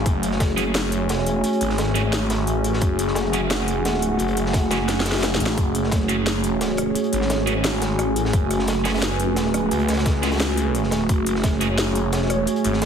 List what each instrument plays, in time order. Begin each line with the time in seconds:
Already playing: ambient pad A3 C#4 F#4 G#5, analog synth pad A3 F#4 G#4
0.06 detuned saw bass F#1, analog synth pad C#5, kick, closed hi-hat
0.23 closed hi-hat
0.31 snare
0.40 kick, snare, closed hi-hat
0.57 distorted electric guitar A3 C#4 F#4 G#4, closed hi-hat
0.75 snare, closed hi-hat
0.92 closed hi-hat
1.02 detuned saw bass F1
1.09 snare, closed hi-hat
1.19 snare
1.27 detuned saw bass E1, closed hi-hat
1.44 closed hi-hat
1.53 closed hi-hat
1.61 detuned saw bass G#1, closed hi-hat
1.69 snare
1.78 snare, closed hi-hat
1.95 distorted electric guitar A3 C#4 F#4 G#4, closed hi-hat
2.13 snare, closed hi-hat
2.30 snare, closed hi-hat
2.47 detuned saw bass A1, closed hi-hat
2.64 closed hi-hat
2.73 snare
2.81 detuned saw bass F#1, analog synth pad F#5, kick, closed hi-hat
2.99 closed hi-hat
3.07 snare
3.15 snare, closed hi-hat
3.33 distorted electric guitar A3 C#4 F#4 G#4, closed hi-hat
3.51 snare, closed hi-hat
3.68 closed hi-hat
3.81 detuned saw bass E1
3.85 snare, closed hi-hat
3.93 snare
4.02 detuned saw bass D1, closed hi-hat
4.19 detuned saw bass F#1, closed hi-hat
4.28 closed hi-hat
4.37 detuned saw bass F#1, closed hi-hat
4.46 snare
4.54 kick, snare, closed hi-hat
4.71 distorted electric guitar A3 C#4 F#4 G#4, snare, closed hi-hat
4.88 detuned saw bass F#1, snare, closed hi-hat
5.00 snare
5.06 snare, closed hi-hat
5.12 snare
5.14 snare, closed hi-hat
5.18 snare, closed hi-hat
5.23 snare, closed hi-hat
5.35 snare
5.40 detuned saw bass A1, closed hi-hat
5.46 snare
5.58 detuned saw bass F#1, analog synth pad C#5, kick, closed hi-hat
5.75 closed hi-hat
5.83 snare
5.92 kick, snare, closed hi-hat
6.08 distorted electric guitar A3 C#4 F#4 G#4, closed hi-hat
6.26 snare, closed hi-hat
6.44 closed hi-hat
6.61 snare, closed hi-hat
6.69 snare
6.77 cross-stick, closed hi-hat
6.92 ambient pad G#5, closed hi-hat
7.04 closed hi-hat
7.13 detuned saw bass G#1, closed hi-hat
7.21 snare
7.30 snare, closed hi-hat
7.47 distorted electric guitar A3 C#4 F#4 G#4, closed hi-hat
7.64 snare, closed hi-hat
7.82 snare, closed hi-hat
7.99 detuned saw bass A1, cross-stick, closed hi-hat
8.16 closed hi-hat
8.25 snare
8.33 detuned saw bass F#1, analog synth pad B4, kick, closed hi-hat
8.50 cross-stick, closed hi-hat
8.59 snare
8.67 snare, closed hi-hat
8.85 distorted electric guitar A3 C#4 F#4 G#4, cross-stick, snare, closed hi-hat
8.94 snare, closed hi-hat
8.98 snare, closed hi-hat
9.02 snare, closed hi-hat
9.20 closed hi-hat
9.32 detuned saw bass E1
9.36 snare, closed hi-hat
9.46 snare
9.54 detuned saw bass D1, cross-stick, closed hi-hat
9.71 detuned saw bass C#2, closed hi-hat
9.79 closed hi-hat
9.88 detuned saw bass C#2, snare, closed hi-hat
9.92 snare, closed hi-hat
9.97 snare, closed hi-hat
10.06 kick, snare, closed hi-hat
10.23 distorted electric guitar A3 C#4 F#4 G#4, snare, closed hi-hat
10.31 snare, closed hi-hat
10.36 snare, closed hi-hat
10.40 snare, closed hi-hat
10.57 closed hi-hat
10.75 closed hi-hat
10.83 snare
10.91 snare, closed hi-hat
11.09 detuned saw bass F#1, analog synth pad C#5, kick, closed hi-hat
11.26 closed hi-hat
11.35 snare
11.43 kick, snare, closed hi-hat
11.61 distorted electric guitar A3 C#4 F#4 G#4, closed hi-hat
11.78 snare, closed hi-hat
11.95 closed hi-hat
12.05 detuned saw bass F1
12.12 snare, closed hi-hat
12.22 snare
12.30 detuned saw bass E1, cross-stick, closed hi-hat
12.47 closed hi-hat
12.56 closed hi-hat
12.64 detuned saw bass G#1, closed hi-hat
12.73 snare
12.82 snare, closed hi-hat